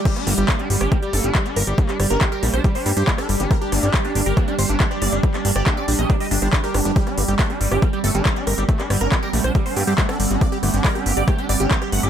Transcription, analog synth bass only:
X:1
M:4/4
L:1/16
Q:1/4=139
K:Cdor
V:1 name="Analog synth bass" clef=bass
z2 G,,, G,,, z2 G,,, G,,, z2 G,,, G,,, z2 G,,, G,,, | z2 G,,, G,,, z2 B,,, B,,, z2 G,, G,, z2 G,,, G,,, | z2 G,,, G,,, z2 G,,, G,,, z2 G,,, G,,, z2 G,,, G,,, | z2 G,,, G,,, z2 B,,, B,,, z2 G,,, G,,, z2 G,,, G,,, |
z2 G,,, G,,, z2 G,,, G,,, z2 G,,, G,,, z2 G,,, G,,, | z2 G,,, G,,, z2 B,,, B,,, z2 G,, G,, z2 G,,, G,,, | z2 G,,, G,,, z2 G,,, G,,, z2 G,,, G,,, z2 G,,, G,,, |]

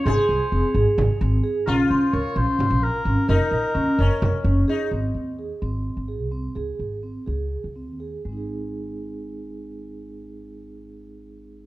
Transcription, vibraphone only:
X:1
M:7/8
L:1/8
Q:1/4=128
K:Ab
V:1 name="Vibraphone"
A2 C A2 C A | D2 B D2 B D | B2 D B2 D A | C2 A C2 A C |
A2 C A2 C A | [A,CEA]6- [A,CEA]- | [A,CEA]6- [A,CEA] |]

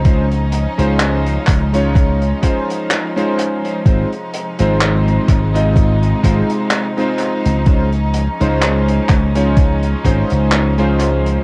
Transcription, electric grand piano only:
X:1
M:4/4
L:1/16
Q:"Swing 16ths" 1/4=63
K:Ab
V:1 name="Electric grand piano"
[A,DEFc] z2 [A,DEFc]4 [A,DEFd]3 [A,DEFc]3 [A,DEFc]3 | [A,CEFc] z2 [A,CEFc]4 [A,CEFe]3 [A,CEFc]3 [A,CEFc]3 | [A,DEFc] z2 [A,DEFc]4 [A,DEFd]3 [A,DEFc]3 [A,DEFc]3 |]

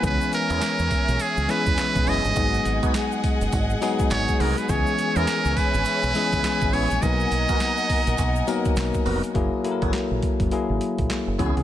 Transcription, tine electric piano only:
X:1
M:4/4
L:1/8
Q:"Swing 16ths" 1/4=103
K:C#dor
V:1 name="Tine electric piano"
[E,G,B,CG]3 z2 [E,G,B,CG]3 | [F,G,B,DG]3 z2 [F,G,B,DG]3 | [E,G,B,CG]3 z2 [E,G,B,CG]3 | [F,A,B,DA]3 z2 [F,A,B,DA]3 |
[F,A,EG] [F,A,E=A^A]3 [F,A,EG]3 [E,B,CFG] |]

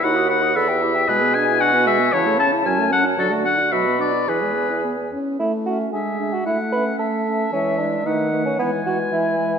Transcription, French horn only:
X:1
M:2/4
L:1/16
Q:1/4=113
K:Edor
V:1 name="French horn"
^D F D F E G E G | [K:A] G, B, D E D B, G, B, | E, A, C E F, A, C F | F, A, D F F, B, D F |
E, G, B, E B,2 C2 | A,4 G,4 | A,4 A,4 | E,4 ^D,4 |
E,4 E,4 |]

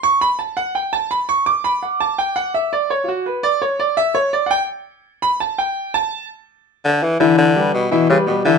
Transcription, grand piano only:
X:1
M:4/4
L:1/8
Q:1/4=168
K:Edor
V:1 name="Grand piano"
c' b a f g a b c' | d' b f a g f e d | c [=F^F] B d c d e c | d [fg] z3 b a g- |
g a2 z4 z | [E,Ee]2 [G,GB]2 [E,Ee] [G,GB] [G,GB] [E,Ee] |]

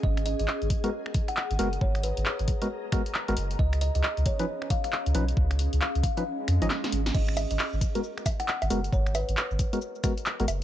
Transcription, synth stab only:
X:1
M:4/4
L:1/16
Q:"Swing 16ths" 1/4=135
K:G#dor
V:1 name="Synth stab"
z6 z [G,B,FA] z6 [G,B,FA] z | z6 z [G,B,FA] z2 [G,B,FA] z2 [G,B,FA] z2 | z6 z [E,CDB] z6 [E,CDB] z | z6 z [E,CDB] z3 [E,CDd] z4 |
z6 z [G,B,FA] z6 [G,B,FA] z | z6 z [G,B,FA] z2 [G,B,FA] z2 [G,B,FA] z2 |]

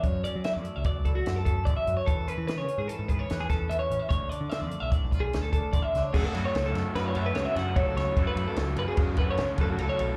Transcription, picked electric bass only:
X:1
M:5/4
L:1/16
Q:1/4=148
K:F#m
V:1 name="Picked electric bass" clef=bass
F,,2 z F,2 F,, z C,, z C,,3 F,,2 F,,2 A,,, z F,, z | E,,2 z E,2 C, z G,, z G,,3 E,,2 E,,2 E,, z A,,, z | D,,2 z D,2 =F,, z B,,, z B,,,3 D,,2 D,,2 A,,, z C,, z | F,, z F,, z C,,2 F,, z F,,2 F,,2 C,, z F,,2 C,, z C,, z |
F,, z F,, z C,,2 F,, z F,,2 F,,2 C,, z F,,2 C,, z B,,, z |]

